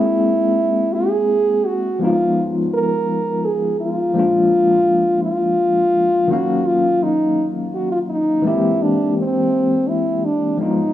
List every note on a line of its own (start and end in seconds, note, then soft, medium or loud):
0.00 1.96 G#3 medium
0.00 1.97 A#3 soft
0.00 1.97 C4 medium
0.00 0.96 E4 medium
0.00 1.98 E4 soft
0.00 1.99 G#4 medium
0.95 1.67 G#4 loud
1.66 2.01 F#4 medium
1.99 4.10 F3 medium
1.99 4.11 G#3 soft
1.99 4.11 B3 medium
1.99 2.43 F4 medium
2.03 4.12 D#4 soft
2.03 4.13 F4 medium
2.73 3.47 A#4 loud
3.45 3.80 G#4 medium
3.80 5.19 F4 loud
4.14 6.25 F3 medium
4.14 6.26 G#3 soft
4.14 6.26 A#3 medium
4.18 6.27 D4 medium
4.18 6.28 F4 medium
5.23 6.32 F4 medium
6.28 8.39 D#3 medium
6.28 8.39 F#3 soft
6.28 8.40 A#3 soft
6.28 6.67 F#4 medium
6.32 8.41 C#4 medium
6.32 8.42 F5 medium
6.66 7.04 F4 medium
7.03 7.46 D#4 medium
7.74 7.90 F#4 medium
7.92 7.99 F4 medium
8.10 8.48 D#4 medium
8.42 10.53 E3 medium
8.42 10.54 G#3 medium
8.42 10.55 A#3 medium
8.47 10.55 C4 medium
8.47 8.84 E4 medium
8.47 10.56 G4 medium
8.82 9.17 D4 medium
9.18 9.91 C4 medium
9.89 10.27 E4 medium
10.25 10.59 D4 medium
10.57 10.93 F3 medium
10.57 10.93 G#3 medium
10.57 10.93 B3 soft
10.57 10.93 D#4 medium
10.61 10.93 D#4 soft
10.61 10.93 F4 medium